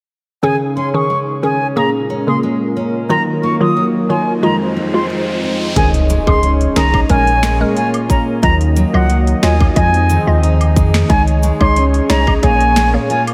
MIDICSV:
0, 0, Header, 1, 9, 480
1, 0, Start_track
1, 0, Key_signature, -5, "major"
1, 0, Tempo, 666667
1, 310, Time_signature, 4, 2, 24, 8
1, 9604, End_track
2, 0, Start_track
2, 0, Title_t, "Flute"
2, 0, Program_c, 0, 73
2, 312, Note_on_c, 0, 80, 103
2, 403, Note_off_c, 0, 80, 0
2, 551, Note_on_c, 0, 84, 73
2, 642, Note_off_c, 0, 84, 0
2, 679, Note_on_c, 0, 85, 77
2, 852, Note_off_c, 0, 85, 0
2, 1034, Note_on_c, 0, 80, 73
2, 1205, Note_off_c, 0, 80, 0
2, 1273, Note_on_c, 0, 82, 83
2, 1364, Note_off_c, 0, 82, 0
2, 1638, Note_on_c, 0, 84, 69
2, 1719, Note_off_c, 0, 84, 0
2, 2231, Note_on_c, 0, 82, 96
2, 2322, Note_off_c, 0, 82, 0
2, 2472, Note_on_c, 0, 85, 73
2, 2563, Note_off_c, 0, 85, 0
2, 2598, Note_on_c, 0, 87, 81
2, 2771, Note_off_c, 0, 87, 0
2, 2951, Note_on_c, 0, 80, 73
2, 3124, Note_off_c, 0, 80, 0
2, 3190, Note_on_c, 0, 82, 86
2, 3282, Note_off_c, 0, 82, 0
2, 3558, Note_on_c, 0, 84, 69
2, 3639, Note_off_c, 0, 84, 0
2, 4150, Note_on_c, 0, 80, 102
2, 4242, Note_off_c, 0, 80, 0
2, 4517, Note_on_c, 0, 84, 82
2, 4690, Note_off_c, 0, 84, 0
2, 4870, Note_on_c, 0, 82, 88
2, 5043, Note_off_c, 0, 82, 0
2, 5110, Note_on_c, 0, 80, 107
2, 5455, Note_off_c, 0, 80, 0
2, 5591, Note_on_c, 0, 80, 83
2, 5682, Note_off_c, 0, 80, 0
2, 5830, Note_on_c, 0, 82, 78
2, 5922, Note_off_c, 0, 82, 0
2, 6069, Note_on_c, 0, 82, 104
2, 6161, Note_off_c, 0, 82, 0
2, 6436, Note_on_c, 0, 78, 76
2, 6610, Note_off_c, 0, 78, 0
2, 6789, Note_on_c, 0, 80, 77
2, 6963, Note_off_c, 0, 80, 0
2, 7028, Note_on_c, 0, 80, 105
2, 7374, Note_off_c, 0, 80, 0
2, 7990, Note_on_c, 0, 80, 97
2, 8082, Note_off_c, 0, 80, 0
2, 8357, Note_on_c, 0, 84, 85
2, 8530, Note_off_c, 0, 84, 0
2, 8711, Note_on_c, 0, 82, 81
2, 8884, Note_off_c, 0, 82, 0
2, 8951, Note_on_c, 0, 80, 103
2, 9296, Note_off_c, 0, 80, 0
2, 9431, Note_on_c, 0, 80, 91
2, 9522, Note_off_c, 0, 80, 0
2, 9604, End_track
3, 0, Start_track
3, 0, Title_t, "Analog synth pad"
3, 0, Program_c, 1, 89
3, 311, Note_on_c, 1, 68, 83
3, 312, Note_on_c, 1, 61, 78
3, 312, Note_on_c, 1, 63, 65
3, 1261, Note_off_c, 1, 63, 0
3, 1261, Note_off_c, 1, 68, 0
3, 1272, Note_on_c, 1, 56, 77
3, 1272, Note_on_c, 1, 58, 76
3, 1272, Note_on_c, 1, 65, 75
3, 1272, Note_on_c, 1, 70, 90
3, 2212, Note_off_c, 1, 61, 0
3, 2222, Note_off_c, 1, 56, 0
3, 2230, Note_on_c, 1, 54, 75
3, 2230, Note_on_c, 1, 63, 70
3, 3172, Note_off_c, 1, 58, 0
3, 3172, Note_off_c, 1, 70, 0
3, 3181, Note_off_c, 1, 54, 0
3, 3190, Note_on_c, 1, 56, 78
3, 3191, Note_on_c, 1, 72, 85
3, 3192, Note_on_c, 1, 60, 73
3, 4123, Note_off_c, 1, 65, 0
3, 4131, Note_off_c, 1, 63, 0
3, 4141, Note_off_c, 1, 56, 0
3, 4141, Note_off_c, 1, 72, 0
3, 4142, Note_off_c, 1, 60, 0
3, 4148, Note_on_c, 1, 63, 80
3, 4149, Note_on_c, 1, 73, 88
3, 4150, Note_on_c, 1, 68, 76
3, 5100, Note_off_c, 1, 63, 0
3, 5107, Note_on_c, 1, 61, 76
3, 5109, Note_on_c, 1, 58, 85
3, 6051, Note_off_c, 1, 68, 0
3, 6051, Note_off_c, 1, 73, 0
3, 6059, Note_off_c, 1, 61, 0
3, 6069, Note_on_c, 1, 63, 74
3, 6069, Note_on_c, 1, 75, 88
3, 6071, Note_on_c, 1, 54, 70
3, 7011, Note_off_c, 1, 58, 0
3, 7021, Note_off_c, 1, 54, 0
3, 7030, Note_on_c, 1, 68, 78
3, 7031, Note_on_c, 1, 60, 82
3, 7971, Note_off_c, 1, 75, 0
3, 7981, Note_off_c, 1, 60, 0
3, 7992, Note_on_c, 1, 73, 93
3, 8921, Note_off_c, 1, 63, 0
3, 8949, Note_on_c, 1, 58, 80
3, 8950, Note_on_c, 1, 61, 74
3, 9604, Note_off_c, 1, 58, 0
3, 9604, Note_off_c, 1, 61, 0
3, 9604, Note_off_c, 1, 68, 0
3, 9604, Note_off_c, 1, 73, 0
3, 9604, End_track
4, 0, Start_track
4, 0, Title_t, "Synth pluck"
4, 0, Program_c, 2, 84
4, 308, Note_on_c, 2, 51, 87
4, 310, Note_on_c, 2, 61, 81
4, 313, Note_on_c, 2, 68, 101
4, 406, Note_off_c, 2, 51, 0
4, 407, Note_off_c, 2, 61, 0
4, 409, Note_off_c, 2, 68, 0
4, 676, Note_on_c, 2, 51, 78
4, 679, Note_on_c, 2, 61, 70
4, 681, Note_on_c, 2, 68, 87
4, 763, Note_off_c, 2, 51, 0
4, 764, Note_off_c, 2, 61, 0
4, 765, Note_off_c, 2, 68, 0
4, 1029, Note_on_c, 2, 51, 77
4, 1031, Note_on_c, 2, 61, 71
4, 1033, Note_on_c, 2, 68, 81
4, 1127, Note_off_c, 2, 51, 0
4, 1128, Note_off_c, 2, 61, 0
4, 1129, Note_off_c, 2, 68, 0
4, 1268, Note_on_c, 2, 49, 96
4, 1272, Note_on_c, 2, 58, 83
4, 1273, Note_on_c, 2, 68, 100
4, 1606, Note_off_c, 2, 49, 0
4, 1608, Note_off_c, 2, 58, 0
4, 1609, Note_off_c, 2, 68, 0
4, 1636, Note_on_c, 2, 49, 73
4, 1639, Note_on_c, 2, 58, 65
4, 1641, Note_on_c, 2, 68, 78
4, 1723, Note_off_c, 2, 49, 0
4, 1724, Note_off_c, 2, 58, 0
4, 1725, Note_off_c, 2, 68, 0
4, 2228, Note_on_c, 2, 51, 89
4, 2231, Note_on_c, 2, 54, 83
4, 2233, Note_on_c, 2, 65, 95
4, 2326, Note_off_c, 2, 51, 0
4, 2328, Note_off_c, 2, 54, 0
4, 2328, Note_off_c, 2, 65, 0
4, 2596, Note_on_c, 2, 51, 77
4, 2597, Note_on_c, 2, 54, 73
4, 2599, Note_on_c, 2, 65, 89
4, 2682, Note_off_c, 2, 51, 0
4, 2683, Note_off_c, 2, 54, 0
4, 2684, Note_off_c, 2, 65, 0
4, 2948, Note_on_c, 2, 51, 78
4, 2950, Note_on_c, 2, 54, 69
4, 2952, Note_on_c, 2, 65, 84
4, 3046, Note_off_c, 2, 51, 0
4, 3047, Note_off_c, 2, 54, 0
4, 3048, Note_off_c, 2, 65, 0
4, 3186, Note_on_c, 2, 51, 89
4, 3188, Note_on_c, 2, 56, 84
4, 3190, Note_on_c, 2, 65, 102
4, 3525, Note_off_c, 2, 51, 0
4, 3526, Note_off_c, 2, 56, 0
4, 3527, Note_off_c, 2, 65, 0
4, 3553, Note_on_c, 2, 51, 70
4, 3555, Note_on_c, 2, 56, 69
4, 3558, Note_on_c, 2, 65, 80
4, 3641, Note_off_c, 2, 51, 0
4, 3642, Note_off_c, 2, 56, 0
4, 3644, Note_off_c, 2, 65, 0
4, 4148, Note_on_c, 2, 51, 96
4, 4149, Note_on_c, 2, 61, 86
4, 4151, Note_on_c, 2, 68, 102
4, 4246, Note_off_c, 2, 51, 0
4, 4247, Note_off_c, 2, 61, 0
4, 4247, Note_off_c, 2, 68, 0
4, 4514, Note_on_c, 2, 51, 85
4, 4517, Note_on_c, 2, 61, 75
4, 4518, Note_on_c, 2, 68, 90
4, 4602, Note_off_c, 2, 51, 0
4, 4603, Note_off_c, 2, 61, 0
4, 4604, Note_off_c, 2, 68, 0
4, 4867, Note_on_c, 2, 51, 79
4, 4869, Note_on_c, 2, 61, 73
4, 4871, Note_on_c, 2, 68, 87
4, 4965, Note_off_c, 2, 51, 0
4, 4966, Note_off_c, 2, 61, 0
4, 4968, Note_off_c, 2, 68, 0
4, 5108, Note_on_c, 2, 56, 94
4, 5110, Note_on_c, 2, 61, 91
4, 5112, Note_on_c, 2, 70, 100
4, 5446, Note_off_c, 2, 56, 0
4, 5447, Note_off_c, 2, 61, 0
4, 5448, Note_off_c, 2, 70, 0
4, 5475, Note_on_c, 2, 56, 78
4, 5477, Note_on_c, 2, 61, 71
4, 5479, Note_on_c, 2, 70, 85
4, 5562, Note_off_c, 2, 56, 0
4, 5563, Note_off_c, 2, 61, 0
4, 5564, Note_off_c, 2, 70, 0
4, 6067, Note_on_c, 2, 54, 93
4, 6070, Note_on_c, 2, 65, 84
4, 6071, Note_on_c, 2, 75, 105
4, 6166, Note_off_c, 2, 54, 0
4, 6167, Note_off_c, 2, 65, 0
4, 6168, Note_off_c, 2, 75, 0
4, 6434, Note_on_c, 2, 54, 81
4, 6437, Note_on_c, 2, 65, 76
4, 6438, Note_on_c, 2, 75, 88
4, 6522, Note_off_c, 2, 54, 0
4, 6523, Note_off_c, 2, 65, 0
4, 6524, Note_off_c, 2, 75, 0
4, 6787, Note_on_c, 2, 54, 78
4, 6789, Note_on_c, 2, 65, 76
4, 6791, Note_on_c, 2, 75, 92
4, 6885, Note_off_c, 2, 54, 0
4, 6886, Note_off_c, 2, 65, 0
4, 6887, Note_off_c, 2, 75, 0
4, 7025, Note_on_c, 2, 56, 97
4, 7026, Note_on_c, 2, 65, 87
4, 7030, Note_on_c, 2, 75, 111
4, 7364, Note_off_c, 2, 56, 0
4, 7365, Note_off_c, 2, 65, 0
4, 7367, Note_off_c, 2, 75, 0
4, 7394, Note_on_c, 2, 56, 77
4, 7396, Note_on_c, 2, 65, 72
4, 7398, Note_on_c, 2, 75, 85
4, 7482, Note_off_c, 2, 56, 0
4, 7483, Note_off_c, 2, 65, 0
4, 7484, Note_off_c, 2, 75, 0
4, 7987, Note_on_c, 2, 56, 97
4, 7989, Note_on_c, 2, 63, 87
4, 7991, Note_on_c, 2, 73, 102
4, 8086, Note_off_c, 2, 56, 0
4, 8087, Note_off_c, 2, 63, 0
4, 8088, Note_off_c, 2, 73, 0
4, 8355, Note_on_c, 2, 56, 82
4, 8357, Note_on_c, 2, 63, 75
4, 8359, Note_on_c, 2, 73, 89
4, 8442, Note_off_c, 2, 56, 0
4, 8443, Note_off_c, 2, 63, 0
4, 8444, Note_off_c, 2, 73, 0
4, 8707, Note_on_c, 2, 56, 78
4, 8709, Note_on_c, 2, 63, 73
4, 8711, Note_on_c, 2, 73, 88
4, 8806, Note_off_c, 2, 56, 0
4, 8807, Note_off_c, 2, 63, 0
4, 8808, Note_off_c, 2, 73, 0
4, 8946, Note_on_c, 2, 58, 97
4, 8948, Note_on_c, 2, 68, 89
4, 8950, Note_on_c, 2, 73, 102
4, 9285, Note_off_c, 2, 58, 0
4, 9286, Note_off_c, 2, 68, 0
4, 9287, Note_off_c, 2, 73, 0
4, 9314, Note_on_c, 2, 58, 77
4, 9316, Note_on_c, 2, 68, 68
4, 9319, Note_on_c, 2, 73, 84
4, 9402, Note_off_c, 2, 58, 0
4, 9403, Note_off_c, 2, 68, 0
4, 9404, Note_off_c, 2, 73, 0
4, 9604, End_track
5, 0, Start_track
5, 0, Title_t, "Steel-string acoustic guitar"
5, 0, Program_c, 3, 25
5, 311, Note_on_c, 3, 49, 76
5, 552, Note_on_c, 3, 61, 60
5, 791, Note_on_c, 3, 56, 58
5, 1022, Note_off_c, 3, 61, 0
5, 1031, Note_on_c, 3, 61, 58
5, 1271, Note_on_c, 3, 46, 78
5, 1322, Note_off_c, 3, 49, 0
5, 1322, Note_off_c, 3, 56, 0
5, 1322, Note_off_c, 3, 61, 0
5, 1511, Note_on_c, 3, 61, 60
5, 1751, Note_on_c, 3, 56, 59
5, 1983, Note_off_c, 3, 61, 0
5, 1991, Note_on_c, 3, 61, 57
5, 2231, Note_on_c, 3, 51, 83
5, 2282, Note_off_c, 3, 46, 0
5, 2282, Note_off_c, 3, 56, 0
5, 2282, Note_off_c, 3, 61, 0
5, 2472, Note_on_c, 3, 58, 59
5, 2711, Note_on_c, 3, 54, 61
5, 2942, Note_off_c, 3, 58, 0
5, 2951, Note_on_c, 3, 58, 60
5, 3190, Note_on_c, 3, 41, 75
5, 3242, Note_off_c, 3, 54, 0
5, 3242, Note_off_c, 3, 58, 0
5, 3431, Note_on_c, 3, 60, 60
5, 3671, Note_on_c, 3, 56, 62
5, 3902, Note_off_c, 3, 60, 0
5, 3911, Note_on_c, 3, 60, 59
5, 4152, Note_off_c, 3, 60, 0
5, 4155, Note_on_c, 3, 63, 76
5, 4201, Note_off_c, 3, 41, 0
5, 4391, Note_off_c, 3, 56, 0
5, 4391, Note_on_c, 3, 56, 66
5, 4630, Note_on_c, 3, 61, 63
5, 4651, Note_off_c, 3, 51, 0
5, 4862, Note_off_c, 3, 63, 0
5, 4870, Note_on_c, 3, 63, 71
5, 5109, Note_on_c, 3, 46, 82
5, 5161, Note_off_c, 3, 61, 0
5, 5161, Note_off_c, 3, 63, 0
5, 5162, Note_off_c, 3, 56, 0
5, 5349, Note_on_c, 3, 56, 65
5, 5590, Note_on_c, 3, 65, 70
5, 5830, Note_on_c, 3, 61, 61
5, 6069, Note_on_c, 3, 51, 84
5, 6091, Note_off_c, 3, 65, 0
5, 6121, Note_off_c, 3, 46, 0
5, 6121, Note_off_c, 3, 56, 0
5, 6121, Note_off_c, 3, 61, 0
5, 6310, Note_on_c, 3, 54, 61
5, 6550, Note_on_c, 3, 58, 67
5, 6789, Note_on_c, 3, 65, 72
5, 7030, Note_on_c, 3, 41, 80
5, 7081, Note_off_c, 3, 54, 0
5, 7081, Note_off_c, 3, 58, 0
5, 7081, Note_off_c, 3, 65, 0
5, 7270, Note_off_c, 3, 51, 0
5, 7270, Note_on_c, 3, 51, 64
5, 7511, Note_on_c, 3, 63, 69
5, 7750, Note_on_c, 3, 56, 59
5, 7987, Note_off_c, 3, 63, 0
5, 7996, Note_on_c, 3, 63, 74
5, 8041, Note_off_c, 3, 41, 0
5, 8041, Note_off_c, 3, 51, 0
5, 8231, Note_off_c, 3, 56, 0
5, 8231, Note_on_c, 3, 56, 64
5, 8471, Note_on_c, 3, 61, 68
5, 8703, Note_off_c, 3, 63, 0
5, 8951, Note_on_c, 3, 46, 86
5, 9002, Note_off_c, 3, 56, 0
5, 9002, Note_off_c, 3, 61, 0
5, 9192, Note_on_c, 3, 56, 62
5, 9431, Note_on_c, 3, 65, 74
5, 9604, Note_off_c, 3, 46, 0
5, 9604, Note_off_c, 3, 56, 0
5, 9604, Note_off_c, 3, 65, 0
5, 9604, End_track
6, 0, Start_track
6, 0, Title_t, "Sub bass"
6, 0, Program_c, 4, 38
6, 4149, Note_on_c, 4, 37, 110
6, 4449, Note_off_c, 4, 37, 0
6, 4516, Note_on_c, 4, 37, 87
6, 4804, Note_off_c, 4, 37, 0
6, 4870, Note_on_c, 4, 36, 93
6, 5066, Note_off_c, 4, 36, 0
6, 5110, Note_on_c, 4, 34, 106
6, 5502, Note_off_c, 4, 34, 0
6, 6071, Note_on_c, 4, 39, 109
6, 6370, Note_off_c, 4, 39, 0
6, 6438, Note_on_c, 4, 37, 92
6, 6726, Note_off_c, 4, 37, 0
6, 6791, Note_on_c, 4, 39, 93
6, 6986, Note_off_c, 4, 39, 0
6, 7030, Note_on_c, 4, 41, 104
6, 7330, Note_off_c, 4, 41, 0
6, 7398, Note_on_c, 4, 39, 94
6, 7751, Note_on_c, 4, 41, 86
6, 7761, Note_off_c, 4, 39, 0
6, 7946, Note_off_c, 4, 41, 0
6, 7991, Note_on_c, 4, 37, 110
6, 8290, Note_off_c, 4, 37, 0
6, 8357, Note_on_c, 4, 37, 85
6, 8645, Note_off_c, 4, 37, 0
6, 8712, Note_on_c, 4, 36, 91
6, 8907, Note_off_c, 4, 36, 0
6, 8951, Note_on_c, 4, 34, 105
6, 9342, Note_off_c, 4, 34, 0
6, 9604, End_track
7, 0, Start_track
7, 0, Title_t, "Impact"
7, 0, Program_c, 5, 103
7, 4149, Note_on_c, 5, 60, 83
7, 6070, Note_off_c, 5, 60, 0
7, 9604, End_track
8, 0, Start_track
8, 0, Title_t, "Riser"
8, 0, Program_c, 6, 103
8, 2230, Note_on_c, 6, 60, 79
8, 4150, Note_off_c, 6, 60, 0
8, 9604, End_track
9, 0, Start_track
9, 0, Title_t, "Drums"
9, 4149, Note_on_c, 9, 42, 88
9, 4150, Note_on_c, 9, 36, 116
9, 4221, Note_off_c, 9, 42, 0
9, 4222, Note_off_c, 9, 36, 0
9, 4278, Note_on_c, 9, 42, 57
9, 4350, Note_off_c, 9, 42, 0
9, 4390, Note_on_c, 9, 69, 72
9, 4391, Note_on_c, 9, 42, 74
9, 4462, Note_off_c, 9, 69, 0
9, 4463, Note_off_c, 9, 42, 0
9, 4516, Note_on_c, 9, 36, 89
9, 4517, Note_on_c, 9, 76, 80
9, 4588, Note_off_c, 9, 36, 0
9, 4589, Note_off_c, 9, 76, 0
9, 4630, Note_on_c, 9, 42, 70
9, 4702, Note_off_c, 9, 42, 0
9, 4758, Note_on_c, 9, 42, 56
9, 4830, Note_off_c, 9, 42, 0
9, 4869, Note_on_c, 9, 38, 122
9, 4870, Note_on_c, 9, 42, 82
9, 4870, Note_on_c, 9, 69, 74
9, 4941, Note_off_c, 9, 38, 0
9, 4942, Note_off_c, 9, 42, 0
9, 4942, Note_off_c, 9, 69, 0
9, 4995, Note_on_c, 9, 36, 92
9, 4999, Note_on_c, 9, 76, 73
9, 5067, Note_off_c, 9, 36, 0
9, 5071, Note_off_c, 9, 76, 0
9, 5108, Note_on_c, 9, 42, 81
9, 5109, Note_on_c, 9, 36, 90
9, 5180, Note_off_c, 9, 42, 0
9, 5181, Note_off_c, 9, 36, 0
9, 5237, Note_on_c, 9, 42, 51
9, 5309, Note_off_c, 9, 42, 0
9, 5349, Note_on_c, 9, 38, 125
9, 5350, Note_on_c, 9, 42, 67
9, 5351, Note_on_c, 9, 69, 86
9, 5421, Note_off_c, 9, 38, 0
9, 5422, Note_off_c, 9, 42, 0
9, 5423, Note_off_c, 9, 69, 0
9, 5591, Note_on_c, 9, 42, 73
9, 5663, Note_off_c, 9, 42, 0
9, 5716, Note_on_c, 9, 42, 57
9, 5717, Note_on_c, 9, 76, 73
9, 5788, Note_off_c, 9, 42, 0
9, 5789, Note_off_c, 9, 76, 0
9, 5830, Note_on_c, 9, 36, 89
9, 5830, Note_on_c, 9, 42, 73
9, 5832, Note_on_c, 9, 69, 77
9, 5902, Note_off_c, 9, 36, 0
9, 5902, Note_off_c, 9, 42, 0
9, 5904, Note_off_c, 9, 69, 0
9, 6070, Note_on_c, 9, 36, 121
9, 6070, Note_on_c, 9, 42, 83
9, 6142, Note_off_c, 9, 36, 0
9, 6142, Note_off_c, 9, 42, 0
9, 6198, Note_on_c, 9, 42, 58
9, 6270, Note_off_c, 9, 42, 0
9, 6310, Note_on_c, 9, 69, 72
9, 6311, Note_on_c, 9, 42, 73
9, 6382, Note_off_c, 9, 69, 0
9, 6383, Note_off_c, 9, 42, 0
9, 6438, Note_on_c, 9, 76, 81
9, 6510, Note_off_c, 9, 76, 0
9, 6549, Note_on_c, 9, 42, 68
9, 6621, Note_off_c, 9, 42, 0
9, 6677, Note_on_c, 9, 42, 58
9, 6749, Note_off_c, 9, 42, 0
9, 6789, Note_on_c, 9, 38, 123
9, 6790, Note_on_c, 9, 42, 82
9, 6791, Note_on_c, 9, 69, 71
9, 6861, Note_off_c, 9, 38, 0
9, 6862, Note_off_c, 9, 42, 0
9, 6863, Note_off_c, 9, 69, 0
9, 6916, Note_on_c, 9, 36, 93
9, 6918, Note_on_c, 9, 76, 73
9, 6988, Note_off_c, 9, 36, 0
9, 6990, Note_off_c, 9, 76, 0
9, 7028, Note_on_c, 9, 42, 80
9, 7030, Note_on_c, 9, 36, 91
9, 7100, Note_off_c, 9, 42, 0
9, 7102, Note_off_c, 9, 36, 0
9, 7157, Note_on_c, 9, 42, 51
9, 7229, Note_off_c, 9, 42, 0
9, 7269, Note_on_c, 9, 42, 68
9, 7270, Note_on_c, 9, 69, 86
9, 7341, Note_off_c, 9, 42, 0
9, 7342, Note_off_c, 9, 69, 0
9, 7512, Note_on_c, 9, 42, 73
9, 7584, Note_off_c, 9, 42, 0
9, 7637, Note_on_c, 9, 76, 73
9, 7639, Note_on_c, 9, 42, 57
9, 7709, Note_off_c, 9, 76, 0
9, 7711, Note_off_c, 9, 42, 0
9, 7750, Note_on_c, 9, 36, 95
9, 7751, Note_on_c, 9, 42, 72
9, 7752, Note_on_c, 9, 69, 81
9, 7822, Note_off_c, 9, 36, 0
9, 7823, Note_off_c, 9, 42, 0
9, 7824, Note_off_c, 9, 69, 0
9, 7878, Note_on_c, 9, 38, 106
9, 7950, Note_off_c, 9, 38, 0
9, 7990, Note_on_c, 9, 42, 85
9, 7991, Note_on_c, 9, 36, 120
9, 8062, Note_off_c, 9, 42, 0
9, 8063, Note_off_c, 9, 36, 0
9, 8118, Note_on_c, 9, 42, 57
9, 8190, Note_off_c, 9, 42, 0
9, 8229, Note_on_c, 9, 69, 75
9, 8232, Note_on_c, 9, 42, 75
9, 8301, Note_off_c, 9, 69, 0
9, 8304, Note_off_c, 9, 42, 0
9, 8357, Note_on_c, 9, 36, 82
9, 8358, Note_on_c, 9, 76, 81
9, 8429, Note_off_c, 9, 36, 0
9, 8430, Note_off_c, 9, 76, 0
9, 8470, Note_on_c, 9, 42, 70
9, 8542, Note_off_c, 9, 42, 0
9, 8597, Note_on_c, 9, 42, 54
9, 8669, Note_off_c, 9, 42, 0
9, 8710, Note_on_c, 9, 38, 126
9, 8710, Note_on_c, 9, 42, 82
9, 8711, Note_on_c, 9, 69, 73
9, 8782, Note_off_c, 9, 38, 0
9, 8782, Note_off_c, 9, 42, 0
9, 8783, Note_off_c, 9, 69, 0
9, 8836, Note_on_c, 9, 36, 93
9, 8839, Note_on_c, 9, 76, 73
9, 8908, Note_off_c, 9, 36, 0
9, 8911, Note_off_c, 9, 76, 0
9, 8949, Note_on_c, 9, 42, 80
9, 8950, Note_on_c, 9, 36, 89
9, 9021, Note_off_c, 9, 42, 0
9, 9022, Note_off_c, 9, 36, 0
9, 9076, Note_on_c, 9, 42, 53
9, 9148, Note_off_c, 9, 42, 0
9, 9189, Note_on_c, 9, 38, 127
9, 9190, Note_on_c, 9, 42, 66
9, 9191, Note_on_c, 9, 69, 79
9, 9261, Note_off_c, 9, 38, 0
9, 9262, Note_off_c, 9, 42, 0
9, 9263, Note_off_c, 9, 69, 0
9, 9432, Note_on_c, 9, 42, 76
9, 9504, Note_off_c, 9, 42, 0
9, 9557, Note_on_c, 9, 76, 75
9, 9558, Note_on_c, 9, 42, 55
9, 9604, Note_off_c, 9, 42, 0
9, 9604, Note_off_c, 9, 76, 0
9, 9604, End_track
0, 0, End_of_file